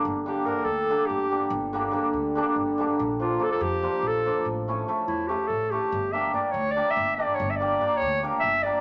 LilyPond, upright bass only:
\new Staff \with { instrumentName = "Upright bass" } { \clef bass \time 7/8 \tempo 4 = 143 g,,4. d,4 g,,4 | g,,4. d,4 g,,4 | bes,,4. f,4 bes,,4 | a,,4. e,4 a,,4 |
g,,4. d,4 g,,4 | g,,4. d,4 g,,4 | }